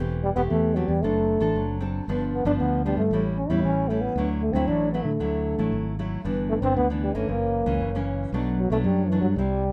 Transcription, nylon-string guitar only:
0.00 0.48 E3 medium
0.00 0.23 A3 medium
0.00 0.23 C4 soft
0.00 0.24 G4 medium
0.36 0.72 A3 medium
0.36 0.72 C4 medium
0.36 0.72 G4 medium
0.50 1.00 E3 medium
0.76 0.92 A3 medium
0.76 0.92 C4 soft
0.76 0.92 G4 medium
1.03 1.53 F#3 soft
1.03 1.38 C4 soft
1.03 1.38 D4 soft
1.03 1.38 A4 medium
1.40 1.76 C4 medium
1.40 1.77 D4 medium
1.40 1.77 A4 medium
1.56 2.05 F#3 soft
1.80 2.03 C4 soft
1.80 2.03 D4 soft
1.80 2.03 A4 medium
2.09 2.58 G2 medium
2.09 2.43 F3 medium
2.09 2.43 B3 medium
2.09 2.43 D4 medium
2.45 2.81 F3 medium
2.45 2.81 B3 medium
2.45 2.81 D4 medium
2.60 3.10 D3 soft
2.86 3.01 F3 medium
2.86 3.01 B3 soft
2.86 3.01 D4 medium
3.13 3.62 A2 soft
3.13 3.37 G3 medium
3.13 3.37 C#4 soft
3.13 3.37 E4 medium
3.50 3.85 G3 medium
3.50 3.85 C#4 medium
3.50 3.86 E4 medium
3.64 4.14 E3 soft
3.90 4.12 G3 soft
3.90 4.12 C#4 soft
3.90 4.12 E4 soft
4.17 4.66 D3 medium
4.17 4.41 F#3 medium
4.17 4.41 A3 soft
4.17 4.42 E4 medium
4.55 4.90 F#3 medium
4.55 4.90 A3 medium
4.55 4.91 E4 medium
4.68 5.18 A2 soft
4.94 5.09 F#3 soft
4.94 5.10 A3 soft
4.94 5.10 E4 medium
5.20 5.70 D3 soft
5.20 5.55 F#3 soft
5.20 5.55 A3 soft
5.20 5.55 E4 medium
5.59 5.94 F#3 soft
5.59 5.94 A3 soft
5.59 5.94 E4 medium
5.99 6.21 F#3 soft
5.99 6.21 A3 soft
5.99 6.21 E4 soft
6.24 6.74 G2 medium
6.24 6.60 E3 medium
6.24 6.60 B3 medium
6.24 6.60 D4 medium
6.62 6.85 E3 medium
6.62 6.85 B3 medium
6.62 6.85 D4 medium
6.77 7.26 D3 soft
6.90 7.12 E3 medium
6.90 7.12 B3 soft
6.90 7.12 D4 medium
7.15 7.63 E3 medium
7.15 7.64 A#3 medium
7.15 7.64 C#4 medium
7.28 7.78 F#2 medium
7.66 7.89 E3 medium
7.66 7.89 A#3 medium
7.66 7.89 C#4 medium
7.80 8.30 C#3 soft
7.95 8.30 E3 soft
7.95 8.30 A#3 medium
7.95 8.30 C#4 medium
8.34 8.83 B2 medium
8.34 8.58 F#3 medium
8.34 8.58 A3 medium
8.34 8.58 D4 medium
8.72 9.07 F#3 medium
8.72 9.07 A3 medium
8.72 9.07 D4 medium
8.86 9.35 F#2 medium
9.12 9.34 F#3 soft
9.12 9.34 A3 soft
9.12 9.34 D4 medium
9.38 9.72 C3 soft
9.38 9.62 G3 soft
9.38 9.63 C4 soft
9.38 9.63 E4 medium

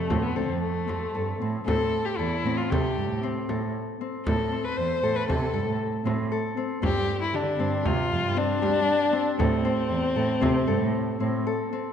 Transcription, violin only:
0.00 0.24 A3 medium
0.22 0.37 B3 medium
0.36 0.60 C4 medium
0.61 1.36 A3 medium
1.66 2.06 A4 medium
2.05 2.19 G4 medium
2.17 2.58 E4 medium
2.57 2.71 F4 medium
2.70 3.22 G4 medium
4.25 4.66 A4 medium
4.64 4.78 B4 medium
4.77 5.17 C5 medium
5.16 5.27 B4 medium
5.28 5.76 A4 medium
6.83 7.19 G4 medium
7.22 7.36 E4 medium
7.34 7.88 D4 medium
7.86 8.39 F4 medium
8.37 9.40 D4 loud
9.39 11.47 C4 medium

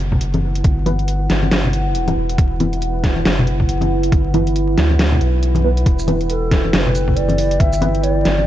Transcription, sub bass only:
0.00 0.63 F#1 medium
0.64 1.28 G1 loud
1.30 2.15 G1 loud
2.17 2.37 E1 loud
2.38 3.24 E1 loud
3.25 4.11 F#1 loud
4.12 4.76 G1 medium
4.77 5.20 D2 loud
5.21 5.85 B1 medium
5.86 6.72 E1 loud
6.73 7.59 F#1 loud
7.60 8.24 G1 medium
8.25 8.47 G1 medium

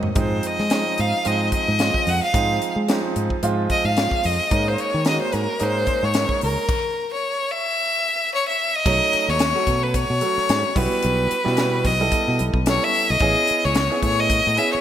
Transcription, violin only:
0.19 0.48 C5 medium
0.46 1.01 D#5 medium
1.00 1.28 F5 medium
1.27 1.53 D#5 medium
1.53 2.10 D#5 medium
2.08 2.22 F#5 medium
2.23 2.73 F5 medium
3.71 3.86 D#5 medium
3.85 4.27 F5 medium
4.25 4.69 D#5 medium
4.68 4.81 C5 medium
4.80 5.06 C#5 medium
5.08 5.21 D#5 medium
5.21 5.35 C5 medium
5.34 5.64 A#4 medium
5.63 6.05 C5 medium
6.04 6.42 C#5 medium
6.43 7.07 A#4 medium
7.13 7.52 C#5 medium
7.51 8.32 E5 medium
8.35 8.47 C#5 medium
8.48 8.77 E5 medium
8.75 9.30 D#5 loud
9.29 9.84 C#5 medium
9.83 9.97 B4 medium
9.95 10.78 C#5 medium
10.76 11.87 B4 medium
11.86 12.40 D#5 medium
12.69 12.85 C#5 medium
12.84 13.12 E5 loud
13.11 13.66 D#5 loud
13.64 14.03 C#5 medium
14.04 14.21 C#5 loud
14.19 14.60 D#5 loud
14.58 14.71 E5 loud
14.72 14.81 C#5 medium

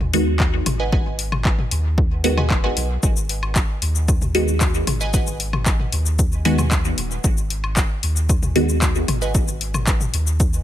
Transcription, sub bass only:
0.00 0.62 D#2 medium
0.66 1.67 G#1 medium
1.71 2.50 D#2 medium
2.50 2.71 F#1 medium
2.77 2.98 B1 medium
3.03 3.65 G#1 medium
3.82 4.83 D#2 medium
4.87 5.88 G#1 medium
5.92 6.93 D#2 medium
6.98 7.19 D#1 medium
7.24 7.86 G#1 loud
8.03 9.04 D#2 medium
9.08 10.09 G#1 medium
10.14 10.63 D#2 medium

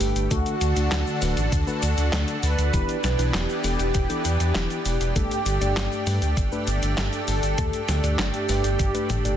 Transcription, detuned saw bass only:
0.01 0.13 G1 loud
0.16 0.28 G1 medium
0.31 0.43 D2 loud
0.61 0.74 D2 medium
0.77 0.89 D2 medium
0.92 1.04 D2 loud
1.22 1.34 D1 medium
1.37 1.49 A1 medium
1.52 1.65 D2 loud
1.83 1.95 D2 loud
1.98 2.10 D2 medium
2.13 2.25 D2 loud
2.43 2.55 D2 medium
2.59 2.71 D2 medium
2.74 2.86 E1 loud
3.04 3.16 B1 medium
3.19 3.31 B1 medium
3.34 3.46 E1 loud
3.64 3.77 E1 medium
3.80 3.92 E1 medium
3.95 4.07 E1 loud
4.25 4.37 E2 loud
4.40 4.52 E2 medium
4.55 4.68 E1 loud
4.86 4.98 E1 loud
5.01 5.13 E1 medium
5.16 5.28 G1 loud
5.46 5.58 G1 medium
5.61 5.74 G1 medium
5.77 5.89 G1 loud
6.07 6.19 G2 medium
6.22 6.34 D2 medium
6.37 6.49 G1 loud
6.68 6.80 G1 loud
6.83 6.95 G1 medium
6.98 7.10 G1 loud
7.28 7.40 G1 loud
7.43 7.55 G1 medium
7.58 7.71 D2 loud
7.89 8.01 D2 loud
8.04 8.16 D2 medium
8.19 8.31 G1 loud
8.49 8.62 G1 medium
8.65 8.77 G1 medium
8.80 8.92 G1 loud
9.10 9.22 G1 loud
9.25 9.37 G1 medium

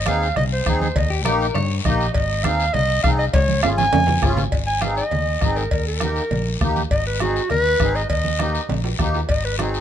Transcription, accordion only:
0.07 0.27 C4 medium
0.07 0.28 D#4 medium
0.07 0.28 G#4 medium
0.67 0.87 C4 medium
0.67 0.87 D#4 medium
0.67 0.88 G#4 medium
1.26 1.46 A#3 medium
1.26 1.47 D#4 medium
1.26 1.47 G4 medium
1.86 2.06 A#3 medium
1.86 2.06 D#4 medium
1.86 2.07 G4 medium
2.44 2.65 C4 medium
2.44 2.65 D#4 medium
2.44 2.66 G#4 medium
3.04 3.25 C4 medium
3.04 3.25 D#4 medium
3.04 3.25 G#4 medium
3.63 3.84 C#4 medium
3.63 3.84 F4 medium
3.63 3.85 G#4 medium
4.23 4.44 C#4 medium
4.23 4.44 F4 medium
4.23 4.44 G#4 medium
4.83 5.04 C4 medium
4.83 5.04 D#4 medium
4.83 5.04 G#4 medium
5.43 5.63 C4 medium
5.43 5.63 D#4 medium
5.43 5.64 G#4 medium
6.02 6.23 A#3 medium
6.02 6.23 D#4 medium
6.02 6.23 G4 medium
6.62 6.82 A#3 medium
6.62 6.82 D#4 medium
6.62 6.83 G4 medium
7.20 7.41 C4 medium
7.20 7.42 D#4 medium
7.20 7.42 G#4 medium
7.81 8.01 C4 medium
7.81 8.02 D#4 medium
7.81 8.02 G#4 medium
8.39 8.61 A#3 medium
8.39 8.61 D#4 medium
8.39 8.61 G4 medium
8.99 9.20 A#3 medium
8.99 9.21 D#4 medium
8.99 9.21 G4 medium
9.59 9.80 C4 medium
9.59 9.80 D#4 medium
9.59 9.80 G#4 medium

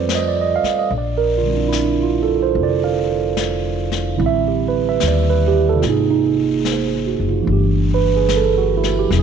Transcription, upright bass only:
0.00 0.59 F2 medium
0.63 muted upright bass stroke soft
0.91 2.51 A#1 medium
2.55 4.15 F1 medium
4.19 4.97 A1 medium
5.03 5.80 D#2 medium
5.84 7.16 G#1 medium
7.20 7.45 F#1 medium
7.47 9.07 G1 medium
9.10 9.23 E1 medium

